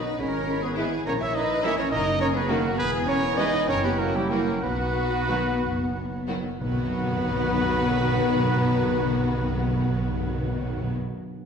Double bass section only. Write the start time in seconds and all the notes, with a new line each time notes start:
0.19 G#1
1.07 A#1
1.92 F#1
2.78 E1
3.68 F#1
4.62 B1
5.60 F#1
6.60 B1